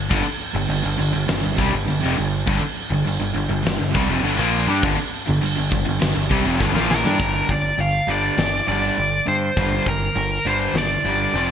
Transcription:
0.10 G1 G2 D3, kick, crash
0.24 muted overdriven electric guitar stroke
0.41 crash
0.55 G1 G2 D3
0.69 G1 G2 D3, crash
0.83 G1 G2 D3
0.98 G1 G2 D3, crash
1.13 G1 G2 D3
1.28 G1 G2 D3, snare, crash
1.43 G1 G2 D3
1.57 C2 C3 G3, kick, crash
1.73 G1 G2 D3
1.87 G1 G2 D3, crash
2.02 F1 F2 C3
2.17 G1 G2 D3, crash
2.47 G1 G2 D3, kick, crash
2.62 muted overdriven electric guitar stroke, muted picked electric bass stroke
2.77 crash
2.90 G1 G2 D3
3.05 G1 G2 D3, crash
3.20 G1 G2 D3
3.34 G1 G2 D3, crash
3.48 G1 G2 D3
3.63 G1 G2 D3, snare, crash
3.78 G1 G2 D3
3.83 G2
3.94 C2 C3 G3, kick, crash
4.09 F1 F2 C3
4.22 G1 G2 D3, crash
4.37 A#1 A#2 F3 A#3
4.54 crash
4.66 G2 G3 D4
4.82 G1 G2 D3, kick, crash
4.97 muted overdriven electric guitar stroke, muted picked electric bass stroke
5.14 crash
5.26 G1 G2 D3
5.41 G1 G2 D3, crash
5.56 G1 G2 D3
5.70 G1 G2 D3, kick, crash
5.85 G1 G2 D3
6.00 G1 G2 D3, snare, crash
6.15 G1 G2 D3
6.30 C2 C3 G3, kick, crash
6.44 F1 F2 C3
6.59 G1 G2 D3, kick, snare
6.74 A#1 A#2 F3 A#3, snare
6.91 A#4, snare
7.03 G2 G3 D4, snare
7.18 G1 G2 D3 G3, kick, open hi-hat
7.47 G1 G2 D3 D5, kick, open hi-hat
7.77 G1 G2 D3 F5, open hi-hat
8.07 G1 G2 D3 G3 D5, open hi-hat
8.38 G1 G2 D3, snare, open hi-hat
8.67 G1 G2 D3 G3 D5, open hi-hat
8.97 G1 G2 D3, open hi-hat
9.27 G2 D3 C5, open hi-hat
9.57 G1 G2 D3 G3, kick, open hi-hat
9.86 G1 G2 D3 A#4, kick, open hi-hat
10.15 G1 G2 D3, open hi-hat
10.45 G1 G2 D3 G3 C5, open hi-hat
10.74 G1 G2 D3, snare, open hi-hat
10.78 D5
11.04 G1 G2 D3 G3, open hi-hat
11.34 F1 F2 C3 F3, open hi-hat

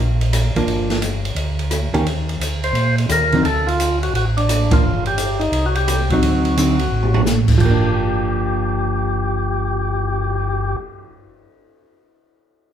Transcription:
Already playing: A#1
0.21 ride
0.33 cross-stick, hi-hat pedal, ride
0.55 A#1 F3 A#3 D4, ride
0.66 G1, ride
0.90 snare, ride
1.02 hi-hat pedal, ride
1.25 ride
1.35 D2, ride
1.59 ride
1.71 cross-stick, hi-hat pedal, ride
1.93 D2 D#3 A#3 C#4 G4, ride
2.04 D#2, ride
2.29 ride
2.40 D2, hi-hat pedal, ride
2.64 C5, ride
2.73 A#2, ride
2.98 ride
3.09 D#2 A#4, cross-stick, hi-hat pedal, ride
3.32 D3 F#3 C4 D#4, ride
3.44 D2 A4, ride
3.67 F4, ride
3.80 hi-hat pedal, ride
4.03 F#4, ride
4.13 A1 F#4, ride
4.37 D4, ride
4.49 cross-stick, hi-hat pedal, ride
4.71 F3 A#3 D4 F4, kick, ride
4.82 G1
5.05 G4, ride
5.18 hi-hat pedal, ride
5.39 D#4, ride
5.52 C2, ride
5.66 F#4
5.75 G4, ride
5.88 cross-stick, hi-hat pedal, ride
6.10 F#3 C4 D#4 F#4, kick, ride
6.22 D2, ride
6.45 ride
6.57 D3 F#3 C4 D#4, hi-hat pedal, ride
6.79 ride
6.91 A1
7.03 floor tom
7.14 floor tom
7.26 snare, hi-hat pedal
7.48 A1, kick, crash
7.58 G1 F3 G4, kick, crash
7.65 A#3
7.71 D4
7.83 cymbal swell

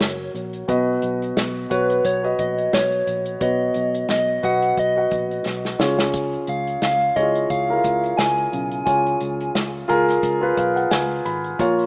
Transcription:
Already playing: F#4 A#4 C#5
0.00 F#1, snare, closed hi-hat
0.35 A#1, closed hi-hat
0.53 closed hi-hat
0.68 B1 B2 F#4 B4 D#5, kick, closed hi-hat
1.02 B1, closed hi-hat
1.22 closed hi-hat
1.37 B1, snare, closed hi-hat
1.70 B1 F#4 B4 C#5, kick, closed hi-hat
1.90 closed hi-hat
2.05 B1 C#5, kick, closed hi-hat
2.23 F#4 B4 D#5, closed hi-hat
2.39 A#1 D#5, kick, closed hi-hat
2.58 closed hi-hat
2.73 B1 C#5, snare, closed hi-hat
2.92 closed hi-hat
3.07 A#1, closed hi-hat
3.26 closed hi-hat
3.40 B1 B2 F#4 B4 C#5 D#5, kick, closed hi-hat
3.74 B1, closed hi-hat
3.95 closed hi-hat
4.09 B1 D#5, snare, closed hi-hat
4.43 B1 F#4 B4 D#5 F#5, kick, closed hi-hat
4.62 closed hi-hat
4.77 B1 D#5, kick, closed hi-hat
4.96 F#4 B4 F#5
5.11 A#1, kick, closed hi-hat
5.31 closed hi-hat
5.46 B1, snare
5.65 snare
5.79 C#2 C#3 F4 G#4 C#5, snare
5.99 snare
6.14 kick, closed hi-hat
6.33 closed hi-hat
6.47 C#2 F5, closed hi-hat
6.67 closed hi-hat
6.82 C#2 F5, snare, closed hi-hat
7.01 closed hi-hat
7.16 C#2 E4 G#4 C#5 D#5, kick, closed hi-hat
7.22 F4
7.35 closed hi-hat
7.50 C#2 F5, kick, closed hi-hat
7.69 E4 G#4 A#4
7.75 F4
7.84 C#2, kick, closed hi-hat
8.04 closed hi-hat
8.17 C#2 G#5, snare, closed hi-hat
8.38 closed hi-hat
8.52 B1 C#3, closed hi-hat
8.72 closed hi-hat
8.86 C#2 F4 G#4 C#5 G#5, kick, closed hi-hat
9.06 closed hi-hat
9.21 C#2, closed hi-hat
9.41 closed hi-hat
9.55 C#2, snare, closed hi-hat
9.88 C#2 F4 G#4 A#4, kick, closed hi-hat
10.09 snare, closed hi-hat
10.23 C#2, kick, closed hi-hat
10.41 F4 G#4 B4
10.57 B1 F5, kick, closed hi-hat
10.76 F#5, closed hi-hat
10.91 C#2 G#5, snare, closed hi-hat
11.25 G#1 B5, closed hi-hat
11.44 closed hi-hat
11.59 A#1 A#2 F4 A#4 C#5, kick, closed hi-hat
11.79 closed hi-hat

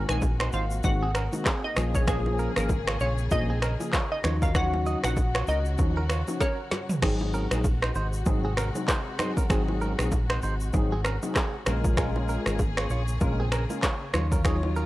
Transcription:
Already playing: C3 A#3 F#4
0.09 A#1 D#3 G#3 C4 F#4 G#5, finger snap, cross-stick, shaker
0.22 kick, high bongo, shaker
0.40 D#4 C5, finger snap, cross-stick
0.53 G#1 D#4 C5 F5, shaker
0.70 shaker
0.83 G#1 D#3 G#3 C4 F#4 F#5, kick, low conga, shaker
1.03 C4 G#4
1.15 C#4 A#4, finger snap, cross-stick, shaker
1.32 D#3 G#3 C4 F#4, low bongo, shaker
1.46 C4 G#4, finger snap, kick, cross-stick, clap, high bongo, shaker
1.64 D#5
1.76 A#1 C#3 F3 A#3 C#4 G#4, finger snap, cross-stick, low conga, shaker
1.95 C#5, kick, shaker
2.07 F3 A#3 C#4 G#4, finger snap, kick, cross-stick, low conga, shaker
2.26 low bongo
2.39 C#4 A#4, shaker
2.56 G#1 F3 A#3 C#4 G#4 A#4, finger snap, cross-stick, shaker
2.69 kick, high bongo, shaker
2.87 F4 C#5, finger snap, cross-stick
3.00 A#1 F4 C#5, shaker
3.18 shaker
3.31 A#1 F3 A#3 C#4 G#4 D#5, kick, low conga, shaker
3.50 C4 G#4
3.62 C#4 A#4, finger snap, cross-stick, shaker
3.80 F3 A#3 C#4 G#4, low bongo, shaker
3.93 F4 C#5, finger snap, kick, cross-stick, clap, high bongo, shaker
4.12 D#5
4.24 D#2 C#3 F3 F#3 C#4 D#4 F4 F#4 C#5, finger snap, cross-stick, low conga, shaker
4.42 C#4 A#4 F5, kick, shaker
4.55 F#3 C#4 D#4 F4 F#4 C#5 F#5, finger snap, kick, cross-stick, low conga, shaker
4.73 low bongo
4.86 F#4 D#5, shaker
5.03 A#1 F3 C#4 D#4 F#4 F#5, finger snap, cross-stick, low bongo, shaker
5.17 kick, high bongo, shaker
5.35 F4 C#5, finger snap, cross-stick
5.47 C#2 C#4 A#4 D#5, low bongo, shaker
5.65 shaker
5.78 D#2 F3 C#4 D#4 F#4, kick, low conga, shaker
5.97 C#4 A#4
6.09 F4 C#5, finger snap, cross-stick, shaker
6.27 F3 C#4 D#4 F#4, low bongo, shaker
6.41 C#4 A#4 C#5, kick, snare, high bongo, shaker
6.71 snare, low conga, shaker
6.89 floor tom, shaker
7.02 G#1 C3 F#3 G#3 C4 D#4 F#4 G#4, finger snap, kick, cross-stick, crash, low conga
7.21 low bongo
7.34 C#4 A#4, shaker
7.51 A#1 F#3 C4 D#4 G#4, finger snap, cross-stick, shaker
7.64 kick, high bongo, shaker
7.82 D#4 C5, finger snap, cross-stick
7.95 G#1 D#4 C5, shaker
8.13 shaker
8.26 G#1 F#3 C4 D#4 G#4, kick, low conga, shaker
8.45 C4 G#4
8.57 C#4 A#4, finger snap, cross-stick, shaker
8.75 F#3 C4 D#4 G#4, low bongo, shaker
8.88 D#4 C5, finger snap, kick, cross-stick, clap, high bongo, shaker
9.19 F#3 C4 D#4 G#4 C5, finger snap, cross-stick, low conga, shaker
9.37 C#4 A#4, kick, shaker
9.49 G#1 F#3 C4 D#4 G#4, finger snap, kick, cross-stick, low conga, shaker
9.68 low bongo
9.81 C#4 A#4, shaker
9.98 A#1 F#3 C4 D#4 G#4, finger snap, cross-stick, shaker
10.12 kick, high bongo, shaker
10.30 D#4 C5, finger snap, cross-stick
10.42 G#1 D#4 C5, shaker
10.60 shaker
10.73 G#1 F#3 C4 D#4 G#4, kick, low conga, shaker
10.92 C4 G#4
11.04 C#4 A#4, finger snap, cross-stick, shaker
11.22 F#3 C4 D#4 G#4, low bongo, shaker
11.35 C4 G#4, finger snap, kick, cross-stick, clap, high bongo, shaker
11.66 A#1 C#3 G#3 A#3 C#4 F4 G#4 A#4, finger snap, cross-stick, low conga, shaker
11.84 kick, shaker
11.97 G#3 C#4 F4 G#4 A#4, finger snap, kick, cross-stick, low conga, shaker
12.16 low bongo
12.29 C#4 A#4, shaker
12.46 G#1 G#3 C#4 F4 A#4, finger snap, cross-stick, shaker
12.59 kick, high bongo, shaker
12.77 F4 C#5, finger snap, cross-stick
12.90 A#1 F4 C#5, shaker
13.08 shaker
13.20 A#1 G#3 C#4 F4 A#4, kick, low conga, shaker
13.40 C4 G#4
13.52 C#4 A#4, finger snap, cross-stick, shaker
13.69 G#3 C#4 F4 A#4, low bongo, shaker
13.83 F4 C#5, finger snap, kick, cross-stick, clap, high bongo, shaker
14.13 D#2 F#3 D#4 F4 C#5, finger snap, cross-stick, low conga, shaker
14.32 C#4 A#4, kick, shaker
14.44 F#3 C#4 D#4 F4 G#4 C#5, finger snap, kick, cross-stick, low conga, shaker
14.63 low bongo
14.76 C#4 A#4, shaker

